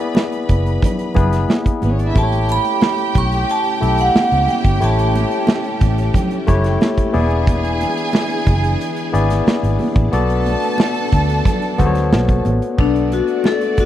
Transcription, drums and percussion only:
0.15 snare, high conga
0.32 closed hi-hat
0.49 kick, closed hi-hat, muted conga
0.66 closed hi-hat
0.82 kick, closed hi-hat, low conga
0.99 closed hi-hat
1.14 kick, closed hi-hat, low conga
1.33 snare, closed hi-hat
1.49 snare, high conga
1.66 kick, closed hi-hat
1.82 closed hi-hat, high conga
1.99 closed hi-hat
2.15 kick, closed hi-hat, muted conga
2.32 closed hi-hat
2.49 closed hi-hat, muted conga
2.65 closed hi-hat
2.82 snare, high conga
2.98 closed hi-hat
3.15 kick, closed hi-hat, muted conga
3.32 closed hi-hat
3.49 closed hi-hat
3.65 closed hi-hat
3.83 closed hi-hat
3.98 closed hi-hat
4.15 snare, high conga
4.32 closed hi-hat
4.48 closed hi-hat, high conga
4.64 kick, closed hi-hat
4.82 closed hi-hat, muted conga
4.99 closed hi-hat
5.15 closed hi-hat, muted conga
5.31 closed hi-hat
5.47 snare, high conga
5.64 closed hi-hat
5.81 kick, closed hi-hat, muted conga
5.98 closed hi-hat
6.14 kick, closed hi-hat, low conga
6.31 closed hi-hat
6.47 kick, closed hi-hat, low conga
6.64 snare, closed hi-hat
6.81 snare, high conga
6.98 kick, closed hi-hat
7.14 open hi-hat, high conga
7.31 closed hi-hat
7.47 kick, closed hi-hat, muted conga
7.65 closed hi-hat
7.81 closed hi-hat, muted conga
7.97 closed hi-hat
8.13 snare, high conga
8.30 closed hi-hat
8.46 kick, closed hi-hat, muted conga
8.64 closed hi-hat
8.81 closed hi-hat
8.96 closed hi-hat
9.15 closed hi-hat
9.30 snare, closed hi-hat
9.47 snare, high conga
9.64 closed hi-hat
9.79 open hi-hat, high conga
9.96 kick, closed hi-hat
10.13 closed hi-hat, muted conga
10.30 closed hi-hat
10.46 closed hi-hat, muted conga
10.62 closed hi-hat
10.78 snare, high conga
10.96 closed hi-hat
11.12 kick, closed hi-hat, muted conga
11.29 closed hi-hat
11.45 kick, closed hi-hat, low conga
11.62 closed hi-hat
11.78 kick, closed hi-hat, low conga
11.95 snare, closed hi-hat
12.13 snare, high conga
12.29 kick, closed hi-hat
12.45 closed hi-hat, high conga
12.62 closed hi-hat
12.79 kick, crash, muted conga
12.96 closed hi-hat
13.12 closed hi-hat, muted conga
13.28 closed hi-hat
13.44 snare, high conga
13.61 closed hi-hat
13.77 kick, closed hi-hat, muted conga

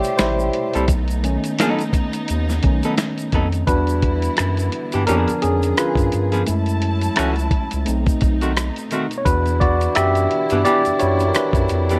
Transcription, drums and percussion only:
0.04 closed hi-hat, shaker
0.19 finger snap, snare, closed hi-hat, shaker
0.40 shaker
0.53 closed hi-hat
0.74 closed hi-hat, shaker
0.88 kick, closed hi-hat, shaker
1.08 closed hi-hat, shaker
1.24 closed hi-hat, shaker
1.44 closed hi-hat, shaker
1.59 finger snap, snare, closed hi-hat, shaker
1.79 closed hi-hat, shaker
1.93 kick, closed hi-hat, shaker
2.13 closed hi-hat, shaker
2.28 closed hi-hat, shaker
2.50 snare, shaker
2.63 kick, closed hi-hat
2.83 closed hi-hat, shaker
2.98 finger snap, snare, closed hi-hat, shaker
3.18 closed hi-hat, shaker
3.32 kick, closed hi-hat
3.52 closed hi-hat, shaker
3.67 kick, closed hi-hat, shaker
3.87 closed hi-hat, shaker
4.02 kick, closed hi-hat
4.22 closed hi-hat, shaker
4.37 finger snap, cross-stick, closed hi-hat, shaker
4.57 closed hi-hat, shaker
4.72 closed hi-hat
4.92 closed hi-hat, shaker
5.07 closed hi-hat, shaker
5.28 closed hi-hat, shaker
5.42 closed hi-hat, shaker
5.63 closed hi-hat, shaker
5.77 finger snap, cross-stick, closed hi-hat, shaker
5.96 kick, closed hi-hat, shaker
6.12 closed hi-hat, shaker
6.32 closed hi-hat, shaker
6.47 closed hi-hat, shaker
6.66 closed hi-hat, shaker
6.82 closed hi-hat
7.01 closed hi-hat, shaker
7.16 finger snap, cross-stick, closed hi-hat, shaker
7.36 closed hi-hat, shaker
7.51 kick, closed hi-hat
7.71 closed hi-hat, shaker
7.86 closed hi-hat, shaker
8.06 kick, closed hi-hat, shaker
8.21 kick, closed hi-hat, shaker
8.41 closed hi-hat, shaker
8.57 finger snap, cross-stick, closed hi-hat, shaker
8.76 closed hi-hat, shaker
8.91 closed hi-hat, shaker
9.11 closed hi-hat, shaker
9.26 kick, closed hi-hat, shaker
9.46 closed hi-hat, shaker
9.61 kick, closed hi-hat
9.81 closed hi-hat, shaker
9.95 finger snap, cross-stick, closed hi-hat, shaker
10.15 closed hi-hat, shaker
10.31 closed hi-hat
10.50 closed hi-hat, shaker
10.65 closed hi-hat, shaker
10.85 closed hi-hat, shaker
11.00 closed hi-hat, shaker
11.20 closed hi-hat, shaker
11.35 finger snap, cross-stick, closed hi-hat, shaker
11.53 kick, closed hi-hat, shaker
11.69 closed hi-hat, shaker
11.89 closed hi-hat, shaker

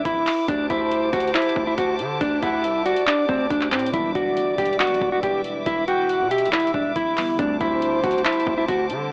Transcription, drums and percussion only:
0.05 kick, closed hi-hat
0.26 clap, open hi-hat
0.48 kick, closed hi-hat
0.70 kick, closed hi-hat
0.91 closed hi-hat
1.13 kick, closed hi-hat
1.20 closed hi-hat
1.27 closed hi-hat
1.35 clap, closed hi-hat
1.42 closed hi-hat
1.49 closed hi-hat
1.56 kick
1.78 kick, closed hi-hat
1.99 closed hi-hat
2.21 kick, closed hi-hat
2.43 kick, closed hi-hat
2.64 closed hi-hat
2.86 closed hi-hat
2.96 closed hi-hat
3.07 clap, closed hi-hat
3.29 kick
3.50 kick, closed hi-hat
3.61 clap
3.72 clap, closed hi-hat, open hi-hat
3.79 closed hi-hat
3.86 closed hi-hat
3.94 kick, closed hi-hat
4.15 kick, closed hi-hat
4.37 closed hi-hat
4.58 kick, closed hi-hat
4.66 closed hi-hat
4.73 closed hi-hat
4.80 clap, closed hi-hat
4.87 closed hi-hat
4.94 closed hi-hat
5.01 kick
5.23 kick, closed hi-hat
5.44 closed hi-hat
5.66 kick, closed hi-hat
5.88 closed hi-hat
6.09 closed hi-hat
6.31 closed hi-hat
6.38 closed hi-hat
6.45 closed hi-hat
6.53 clap, closed hi-hat
6.60 closed hi-hat
6.67 closed hi-hat
6.74 kick
6.96 kick, closed hi-hat
7.17 clap, open hi-hat
7.39 kick, closed hi-hat
7.61 kick, closed hi-hat
7.82 closed hi-hat
8.04 kick, closed hi-hat
8.11 closed hi-hat
8.18 closed hi-hat
8.25 clap, closed hi-hat
8.33 closed hi-hat
8.40 closed hi-hat
8.47 kick
8.68 kick, closed hi-hat
8.90 closed hi-hat

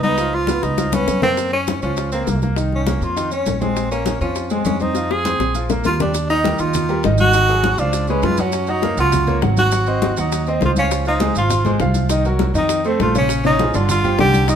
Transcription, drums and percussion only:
0.03 high bongo, high conga, maracas
0.18 high bongo, high conga, maracas
0.33 high bongo, high conga
0.47 high bongo, high conga, maracas
0.63 high bongo, high conga, maracas
0.78 high bongo, high conga, maracas
0.92 low bongo, high conga, maracas
1.08 low bongo, maracas
1.22 low bongo, low conga, maracas
1.37 high bongo, high conga, maracas
1.52 high bongo, high conga
1.67 high bongo, high conga, maracas
1.82 high bongo, high conga, maracas
1.97 high bongo, high conga, maracas
2.12 high conga, maracas
2.27 high bongo, low bongo, high conga, maracas
2.42 high bongo, high conga, maracas
2.56 high bongo, high conga, maracas
2.72 high bongo, high conga
2.87 high bongo, high conga, maracas
3.02 high bongo, high conga, maracas
3.17 high bongo, high conga, maracas
3.31 high conga, maracas
3.46 high bongo, low bongo, high conga, maracas
3.61 high bongo, high conga, maracas
3.76 high bongo, high conga, maracas
3.91 high bongo, high conga, maracas
4.06 high bongo, high conga, maracas
4.21 high bongo, high conga, maracas
4.35 high bongo, high conga, maracas
4.50 high conga, maracas
4.65 high bongo, low bongo, high conga, maracas
4.80 high bongo, high conga, maracas
4.95 high bongo, high conga, maracas
5.11 high bongo, high conga
5.25 high conga, maracas
5.40 high bongo, high conga, maracas
5.55 low bongo, high conga, maracas
5.69 low bongo, high conga, maracas
5.84 low bongo, high conga, maracas
6.00 low bongo, low conga, maracas
6.14 high bongo, high conga, maracas
6.29 high bongo, high conga, maracas
6.44 high bongo, high conga, maracas
6.58 high conga, maracas
6.73 high bongo, high conga, low conga, maracas
6.89 high bongo, high conga, maracas
7.03 high bongo, low bongo, high conga, maracas
7.18 high bongo, high conga, maracas
7.33 high bongo, maracas
7.48 high bongo, high conga, maracas
7.63 high bongo, high conga, maracas
7.78 high bongo, high conga, maracas
7.93 high bongo, high conga, maracas
8.07 high bongo, high conga, maracas
8.22 high bongo, low bongo, high conga, maracas
8.37 high conga, maracas
8.52 high bongo, high conga, maracas
8.67 high bongo, high conga, maracas
8.82 high bongo, high conga, maracas
8.97 high conga, maracas
9.12 high bongo, high conga, low conga, maracas
9.27 high bongo, high conga, low conga, maracas
9.42 high bongo, low bongo, high conga, maracas
9.57 high bongo, high conga, maracas
9.71 high bongo, high conga, maracas
9.86 high bongo, high conga, maracas
10.02 high bongo, high conga, maracas
10.17 high bongo, high conga, maracas
10.32 high bongo, high conga, maracas
10.46 high bongo, high conga, maracas
10.61 high bongo, low bongo, high conga, maracas
10.76 high conga, maracas
10.91 high bongo, high conga, maracas
11.05 high bongo, high conga, maracas
11.20 high bongo, high conga, maracas
11.35 high conga, maracas
11.50 high bongo, high conga, low conga, maracas
11.65 high bongo, high conga, low conga, maracas
11.80 high bongo, low bongo, high conga, maracas
11.94 high bongo, high conga, maracas
12.09 high bongo, high conga, maracas
12.25 high bongo, high conga, maracas
12.39 high bongo, high conga, maracas
12.55 high bongo, high conga, maracas
12.69 high bongo, high conga, maracas
12.85 high bongo, high conga, maracas
13.00 high bongo, low bongo, high conga, maracas
13.15 high conga, maracas
13.29 high bongo, high conga, maracas
13.44 high bongo, high conga, maracas
13.59 high bongo, high conga, maracas
13.74 high conga, maracas
13.89 high bongo, high conga, low conga, maracas
14.04 high bongo, high conga, low conga, maracas
14.19 high bongo, low bongo, high conga, maracas
14.34 high bongo, high conga, maracas
14.48 high bongo, high conga, maracas

